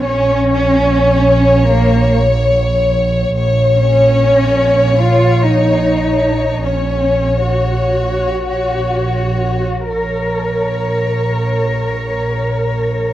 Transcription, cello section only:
0.05 1.66 C#4 medium
1.70 2.10 A#3 medium
3.74 4.94 C#4 medium
4.98 5.39 F4 medium
5.40 6.63 D#4 medium
6.62 7.44 C#4 soft
7.45 9.87 F#4 soft
9.90 13.13 A#4 soft

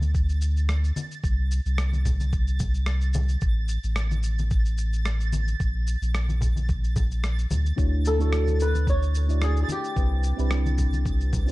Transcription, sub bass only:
0.00 0.92 D2 medium
1.24 1.60 C2 loud
1.66 3.37 C2 medium
3.42 3.78 A1 medium
3.84 5.55 A1 medium
5.60 5.96 A#1 medium
6.02 6.96 A#1 medium
6.96 7.46 A#1 medium
7.51 7.72 D2 medium
7.78 9.64 D2 loud
9.96 10.33 C2 loud
10.39 11.52 C2 medium

